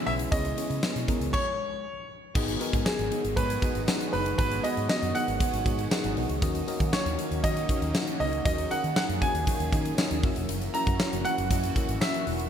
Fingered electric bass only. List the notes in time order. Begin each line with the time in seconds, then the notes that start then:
0.07 B1
0.32 C#2
0.70 C#3
0.95 B2
1.21 C#2
2.35 G#1
2.73 G#2
2.99 G#1
3.24 G#1
3.37 G#2
3.75 G#1
4.13 F#1
4.39 G#1
4.77 G#2
5.02 F#2
5.28 G#1
5.53 G#1
5.66 G#2
6.04 G#1
6.17 B1
6.30 C#2
6.42 D#2
6.80 D#3
7.05 D#2
7.31 D#2
7.44 D#3
7.82 D#2
8.20 C#2
8.45 D#2
8.84 D#3
9.09 F#2
9.34 D#2
9.60 D#2
9.73 D#3
10.11 D#2
10.23 F#1
10.36 E1
10.49 F#1
10.87 F#2
11.13 F#1
11.38 F#1
11.51 F#2
11.89 G#1
12.27 E1